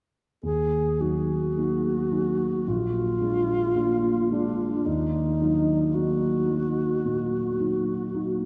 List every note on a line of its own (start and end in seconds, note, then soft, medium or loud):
0.43 2.63 D#2 soft
0.43 1.03 G#4 medium
1.00 1.53 F#3 soft
1.00 1.53 D#4 soft
1.00 2.70 F#4 soft
1.57 2.09 A#3 soft
1.57 2.09 D#4 soft
2.11 2.63 F#3 soft
2.11 2.63 D#4 soft
2.67 4.82 A#1 soft
2.67 4.31 F4 medium
3.21 3.72 G#3 soft
3.21 3.72 D4 soft
3.76 4.27 A#3 soft
3.76 4.27 D4 soft
4.31 4.82 G#3 soft
4.31 4.88 D4 soft
4.31 4.82 D4 soft
4.86 7.00 D#2 soft
4.86 5.96 D#4 soft
5.41 5.91 F#3 soft
5.41 5.91 D#4 soft
5.94 6.46 A#3 soft
5.94 6.46 D#4 soft
5.94 8.45 F#4 soft
6.49 7.00 F#3 soft
6.49 7.01 D#4 soft
7.04 7.92 A#2 soft
7.60 8.10 F#3 soft
7.60 8.10 D#4 soft
8.14 8.45 A#3 soft
8.14 8.45 D#4 soft